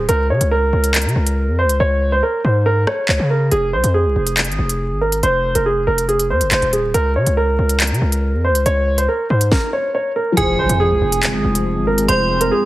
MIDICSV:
0, 0, Header, 1, 8, 480
1, 0, Start_track
1, 0, Key_signature, -4, "minor"
1, 0, Tempo, 428571
1, 97, Time_signature, 4, 2, 24, 8
1, 14170, End_track
2, 0, Start_track
2, 0, Title_t, "Synth bell"
2, 0, Program_c, 0, 98
2, 11616, Note_on_c, 0, 80, 105
2, 12532, Note_off_c, 0, 80, 0
2, 13535, Note_on_c, 0, 84, 111
2, 14170, Note_off_c, 0, 84, 0
2, 14170, End_track
3, 0, Start_track
3, 0, Title_t, "Grand piano"
3, 0, Program_c, 1, 0
3, 96, Note_on_c, 1, 70, 98
3, 280, Note_off_c, 1, 70, 0
3, 338, Note_on_c, 1, 73, 80
3, 521, Note_off_c, 1, 73, 0
3, 575, Note_on_c, 1, 70, 88
3, 1732, Note_off_c, 1, 70, 0
3, 1778, Note_on_c, 1, 72, 82
3, 1961, Note_off_c, 1, 72, 0
3, 2017, Note_on_c, 1, 73, 101
3, 2355, Note_off_c, 1, 73, 0
3, 2377, Note_on_c, 1, 72, 84
3, 2469, Note_off_c, 1, 72, 0
3, 2496, Note_on_c, 1, 70, 79
3, 2680, Note_off_c, 1, 70, 0
3, 2738, Note_on_c, 1, 72, 74
3, 2922, Note_off_c, 1, 72, 0
3, 2978, Note_on_c, 1, 70, 93
3, 3161, Note_off_c, 1, 70, 0
3, 3217, Note_on_c, 1, 73, 82
3, 3401, Note_off_c, 1, 73, 0
3, 3459, Note_on_c, 1, 73, 76
3, 3642, Note_off_c, 1, 73, 0
3, 3699, Note_on_c, 1, 70, 74
3, 3882, Note_off_c, 1, 70, 0
3, 3937, Note_on_c, 1, 68, 105
3, 4121, Note_off_c, 1, 68, 0
3, 4180, Note_on_c, 1, 72, 87
3, 4363, Note_off_c, 1, 72, 0
3, 4415, Note_on_c, 1, 68, 87
3, 5571, Note_off_c, 1, 68, 0
3, 5616, Note_on_c, 1, 70, 73
3, 5800, Note_off_c, 1, 70, 0
3, 5860, Note_on_c, 1, 72, 94
3, 6197, Note_off_c, 1, 72, 0
3, 6218, Note_on_c, 1, 70, 77
3, 6310, Note_off_c, 1, 70, 0
3, 6337, Note_on_c, 1, 68, 83
3, 6521, Note_off_c, 1, 68, 0
3, 6574, Note_on_c, 1, 70, 90
3, 6759, Note_off_c, 1, 70, 0
3, 6815, Note_on_c, 1, 68, 82
3, 7000, Note_off_c, 1, 68, 0
3, 7059, Note_on_c, 1, 72, 76
3, 7242, Note_off_c, 1, 72, 0
3, 7294, Note_on_c, 1, 72, 88
3, 7479, Note_off_c, 1, 72, 0
3, 7535, Note_on_c, 1, 68, 68
3, 7720, Note_off_c, 1, 68, 0
3, 7776, Note_on_c, 1, 70, 98
3, 7960, Note_off_c, 1, 70, 0
3, 8019, Note_on_c, 1, 73, 80
3, 8202, Note_off_c, 1, 73, 0
3, 8256, Note_on_c, 1, 70, 86
3, 9412, Note_off_c, 1, 70, 0
3, 9458, Note_on_c, 1, 72, 79
3, 9642, Note_off_c, 1, 72, 0
3, 9698, Note_on_c, 1, 73, 103
3, 10036, Note_off_c, 1, 73, 0
3, 10056, Note_on_c, 1, 72, 84
3, 10149, Note_off_c, 1, 72, 0
3, 10174, Note_on_c, 1, 70, 79
3, 10359, Note_off_c, 1, 70, 0
3, 10417, Note_on_c, 1, 72, 74
3, 10601, Note_off_c, 1, 72, 0
3, 10657, Note_on_c, 1, 70, 89
3, 10841, Note_off_c, 1, 70, 0
3, 10897, Note_on_c, 1, 73, 81
3, 11081, Note_off_c, 1, 73, 0
3, 11139, Note_on_c, 1, 73, 76
3, 11322, Note_off_c, 1, 73, 0
3, 11378, Note_on_c, 1, 70, 71
3, 11562, Note_off_c, 1, 70, 0
3, 11618, Note_on_c, 1, 68, 106
3, 11801, Note_off_c, 1, 68, 0
3, 11860, Note_on_c, 1, 72, 88
3, 12043, Note_off_c, 1, 72, 0
3, 12094, Note_on_c, 1, 68, 93
3, 13251, Note_off_c, 1, 68, 0
3, 13295, Note_on_c, 1, 70, 75
3, 13480, Note_off_c, 1, 70, 0
3, 13540, Note_on_c, 1, 72, 98
3, 13877, Note_off_c, 1, 72, 0
3, 13898, Note_on_c, 1, 70, 76
3, 13990, Note_off_c, 1, 70, 0
3, 14017, Note_on_c, 1, 68, 86
3, 14170, Note_off_c, 1, 68, 0
3, 14170, End_track
4, 0, Start_track
4, 0, Title_t, "Felt piano"
4, 0, Program_c, 2, 0
4, 11561, Note_on_c, 2, 53, 69
4, 11597, Note_on_c, 2, 65, 60
4, 11634, Note_on_c, 2, 68, 61
4, 11671, Note_on_c, 2, 72, 76
4, 11839, Control_c, 2, 64, 127
4, 14170, Note_off_c, 2, 53, 0
4, 14170, Note_off_c, 2, 65, 0
4, 14170, Note_off_c, 2, 68, 0
4, 14170, Note_off_c, 2, 72, 0
4, 14170, End_track
5, 0, Start_track
5, 0, Title_t, "Analog synth pad"
5, 0, Program_c, 3, 89
5, 11618, Note_on_c, 3, 53, 83
5, 11618, Note_on_c, 3, 56, 76
5, 11618, Note_on_c, 3, 60, 73
5, 11618, Note_on_c, 3, 68, 88
5, 14170, Note_off_c, 3, 53, 0
5, 14170, Note_off_c, 3, 56, 0
5, 14170, Note_off_c, 3, 60, 0
5, 14170, Note_off_c, 3, 68, 0
5, 14170, End_track
6, 0, Start_track
6, 0, Title_t, "808-style bass"
6, 0, Program_c, 4, 38
6, 97, Note_on_c, 4, 37, 107
6, 337, Note_on_c, 4, 49, 102
6, 354, Note_off_c, 4, 37, 0
6, 451, Note_off_c, 4, 49, 0
6, 458, Note_on_c, 4, 37, 101
6, 803, Note_off_c, 4, 37, 0
6, 817, Note_on_c, 4, 37, 106
6, 1178, Note_on_c, 4, 49, 98
6, 1194, Note_off_c, 4, 37, 0
6, 1292, Note_off_c, 4, 49, 0
6, 1297, Note_on_c, 4, 37, 102
6, 1657, Note_on_c, 4, 41, 99
6, 1674, Note_off_c, 4, 37, 0
6, 1838, Note_on_c, 4, 37, 104
6, 1854, Note_off_c, 4, 41, 0
6, 2009, Note_off_c, 4, 37, 0
6, 2018, Note_on_c, 4, 37, 113
6, 2479, Note_off_c, 4, 37, 0
6, 2738, Note_on_c, 4, 44, 102
6, 3199, Note_off_c, 4, 44, 0
6, 3457, Note_on_c, 4, 37, 113
6, 3573, Note_off_c, 4, 37, 0
6, 3578, Note_on_c, 4, 49, 104
6, 3923, Note_off_c, 4, 49, 0
6, 3938, Note_on_c, 4, 29, 111
6, 4177, Note_on_c, 4, 36, 96
6, 4194, Note_off_c, 4, 29, 0
6, 4292, Note_off_c, 4, 36, 0
6, 4297, Note_on_c, 4, 41, 105
6, 4537, Note_on_c, 4, 36, 96
6, 4554, Note_off_c, 4, 41, 0
6, 4651, Note_off_c, 4, 36, 0
6, 4657, Note_on_c, 4, 29, 108
6, 5018, Note_on_c, 4, 32, 98
6, 5035, Note_off_c, 4, 29, 0
6, 5132, Note_off_c, 4, 32, 0
6, 5138, Note_on_c, 4, 29, 107
6, 5498, Note_on_c, 4, 32, 101
6, 5515, Note_off_c, 4, 29, 0
6, 5840, Note_off_c, 4, 32, 0
6, 5858, Note_on_c, 4, 29, 112
6, 6203, Note_off_c, 4, 29, 0
6, 6218, Note_on_c, 4, 29, 99
6, 6563, Note_off_c, 4, 29, 0
6, 6578, Note_on_c, 4, 29, 108
6, 7058, Note_on_c, 4, 41, 93
6, 7075, Note_off_c, 4, 29, 0
6, 7178, Note_on_c, 4, 29, 103
6, 7195, Note_off_c, 4, 41, 0
6, 7292, Note_off_c, 4, 29, 0
6, 7298, Note_on_c, 4, 29, 109
6, 7413, Note_off_c, 4, 29, 0
6, 7418, Note_on_c, 4, 27, 101
6, 7763, Note_off_c, 4, 27, 0
6, 7778, Note_on_c, 4, 37, 110
6, 8018, Note_on_c, 4, 49, 99
6, 8035, Note_off_c, 4, 37, 0
6, 8132, Note_off_c, 4, 49, 0
6, 8138, Note_on_c, 4, 37, 102
6, 8484, Note_off_c, 4, 37, 0
6, 8498, Note_on_c, 4, 37, 107
6, 8858, Note_on_c, 4, 49, 96
6, 8875, Note_off_c, 4, 37, 0
6, 8972, Note_off_c, 4, 49, 0
6, 8978, Note_on_c, 4, 37, 104
6, 9338, Note_on_c, 4, 41, 96
6, 9355, Note_off_c, 4, 37, 0
6, 9518, Note_on_c, 4, 37, 102
6, 9535, Note_off_c, 4, 41, 0
6, 9689, Note_off_c, 4, 37, 0
6, 9698, Note_on_c, 4, 37, 118
6, 10159, Note_off_c, 4, 37, 0
6, 10418, Note_on_c, 4, 44, 104
6, 10648, Note_off_c, 4, 44, 0
6, 11617, Note_on_c, 4, 29, 114
6, 11857, Note_on_c, 4, 36, 101
6, 11874, Note_off_c, 4, 29, 0
6, 11971, Note_off_c, 4, 36, 0
6, 11977, Note_on_c, 4, 41, 109
6, 12217, Note_on_c, 4, 36, 101
6, 12234, Note_off_c, 4, 41, 0
6, 12332, Note_off_c, 4, 36, 0
6, 12338, Note_on_c, 4, 29, 112
6, 12698, Note_on_c, 4, 32, 99
6, 12715, Note_off_c, 4, 29, 0
6, 12812, Note_off_c, 4, 32, 0
6, 12818, Note_on_c, 4, 29, 108
6, 13178, Note_on_c, 4, 32, 101
6, 13195, Note_off_c, 4, 29, 0
6, 13520, Note_off_c, 4, 32, 0
6, 13537, Note_on_c, 4, 29, 117
6, 13998, Note_off_c, 4, 29, 0
6, 14170, End_track
7, 0, Start_track
7, 0, Title_t, "Impact"
7, 0, Program_c, 5, 103
7, 11617, Note_on_c, 5, 60, 89
7, 13537, Note_off_c, 5, 60, 0
7, 14170, End_track
8, 0, Start_track
8, 0, Title_t, "Drums"
8, 97, Note_on_c, 9, 42, 69
8, 209, Note_off_c, 9, 42, 0
8, 457, Note_on_c, 9, 42, 78
8, 569, Note_off_c, 9, 42, 0
8, 937, Note_on_c, 9, 42, 79
8, 1049, Note_off_c, 9, 42, 0
8, 1058, Note_on_c, 9, 39, 115
8, 1058, Note_on_c, 9, 42, 66
8, 1138, Note_off_c, 9, 42, 0
8, 1138, Note_on_c, 9, 42, 52
8, 1170, Note_off_c, 9, 39, 0
8, 1218, Note_off_c, 9, 42, 0
8, 1218, Note_on_c, 9, 42, 39
8, 1330, Note_off_c, 9, 42, 0
8, 1418, Note_on_c, 9, 42, 78
8, 1530, Note_off_c, 9, 42, 0
8, 1898, Note_on_c, 9, 42, 75
8, 2010, Note_off_c, 9, 42, 0
8, 3218, Note_on_c, 9, 37, 97
8, 3330, Note_off_c, 9, 37, 0
8, 3457, Note_on_c, 9, 39, 112
8, 3569, Note_off_c, 9, 39, 0
8, 3937, Note_on_c, 9, 42, 69
8, 4049, Note_off_c, 9, 42, 0
8, 4297, Note_on_c, 9, 42, 80
8, 4409, Note_off_c, 9, 42, 0
8, 4777, Note_on_c, 9, 42, 79
8, 4889, Note_off_c, 9, 42, 0
8, 4898, Note_on_c, 9, 39, 116
8, 4898, Note_on_c, 9, 42, 66
8, 4978, Note_off_c, 9, 42, 0
8, 4978, Note_on_c, 9, 42, 52
8, 5010, Note_off_c, 9, 39, 0
8, 5058, Note_off_c, 9, 42, 0
8, 5058, Note_on_c, 9, 42, 39
8, 5170, Note_off_c, 9, 42, 0
8, 5258, Note_on_c, 9, 42, 79
8, 5370, Note_off_c, 9, 42, 0
8, 5738, Note_on_c, 9, 42, 77
8, 5850, Note_off_c, 9, 42, 0
8, 5858, Note_on_c, 9, 42, 69
8, 5970, Note_off_c, 9, 42, 0
8, 6218, Note_on_c, 9, 42, 78
8, 6330, Note_off_c, 9, 42, 0
8, 6698, Note_on_c, 9, 42, 80
8, 6810, Note_off_c, 9, 42, 0
8, 6818, Note_on_c, 9, 42, 42
8, 6930, Note_off_c, 9, 42, 0
8, 6938, Note_on_c, 9, 42, 67
8, 7050, Note_off_c, 9, 42, 0
8, 7177, Note_on_c, 9, 42, 80
8, 7289, Note_off_c, 9, 42, 0
8, 7297, Note_on_c, 9, 39, 115
8, 7297, Note_on_c, 9, 42, 78
8, 7409, Note_off_c, 9, 39, 0
8, 7409, Note_off_c, 9, 42, 0
8, 7417, Note_on_c, 9, 42, 44
8, 7529, Note_off_c, 9, 42, 0
8, 7537, Note_on_c, 9, 42, 87
8, 7649, Note_off_c, 9, 42, 0
8, 7777, Note_on_c, 9, 42, 70
8, 7889, Note_off_c, 9, 42, 0
8, 8137, Note_on_c, 9, 42, 78
8, 8249, Note_off_c, 9, 42, 0
8, 8617, Note_on_c, 9, 42, 81
8, 8729, Note_off_c, 9, 42, 0
8, 8737, Note_on_c, 9, 42, 66
8, 8738, Note_on_c, 9, 39, 117
8, 8817, Note_off_c, 9, 42, 0
8, 8817, Note_on_c, 9, 42, 53
8, 8850, Note_off_c, 9, 39, 0
8, 8897, Note_off_c, 9, 42, 0
8, 8897, Note_on_c, 9, 42, 38
8, 9009, Note_off_c, 9, 42, 0
8, 9098, Note_on_c, 9, 42, 80
8, 9210, Note_off_c, 9, 42, 0
8, 9577, Note_on_c, 9, 42, 77
8, 9689, Note_off_c, 9, 42, 0
8, 9698, Note_on_c, 9, 42, 69
8, 9810, Note_off_c, 9, 42, 0
8, 10058, Note_on_c, 9, 42, 77
8, 10170, Note_off_c, 9, 42, 0
8, 10538, Note_on_c, 9, 42, 82
8, 10650, Note_off_c, 9, 42, 0
8, 10657, Note_on_c, 9, 36, 110
8, 10657, Note_on_c, 9, 38, 92
8, 10769, Note_off_c, 9, 36, 0
8, 10769, Note_off_c, 9, 38, 0
8, 11617, Note_on_c, 9, 42, 70
8, 11729, Note_off_c, 9, 42, 0
8, 11978, Note_on_c, 9, 42, 80
8, 12090, Note_off_c, 9, 42, 0
8, 12458, Note_on_c, 9, 42, 81
8, 12570, Note_off_c, 9, 42, 0
8, 12578, Note_on_c, 9, 42, 67
8, 12579, Note_on_c, 9, 39, 121
8, 12690, Note_off_c, 9, 42, 0
8, 12691, Note_off_c, 9, 39, 0
8, 12937, Note_on_c, 9, 42, 82
8, 13049, Note_off_c, 9, 42, 0
8, 13417, Note_on_c, 9, 42, 78
8, 13529, Note_off_c, 9, 42, 0
8, 13537, Note_on_c, 9, 42, 71
8, 13649, Note_off_c, 9, 42, 0
8, 13897, Note_on_c, 9, 42, 81
8, 14009, Note_off_c, 9, 42, 0
8, 14170, End_track
0, 0, End_of_file